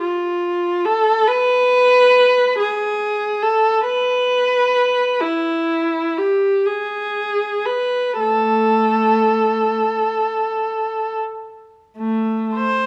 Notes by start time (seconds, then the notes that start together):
0.02 F4
0.85 A4
1.27 B4
2.59 G#4
3.42 A4
3.85 B4
5.20 E4
6.17 G4
6.66 G#4
7.66 B4
8.20 A3 A4
11.97 A3
12.55 C5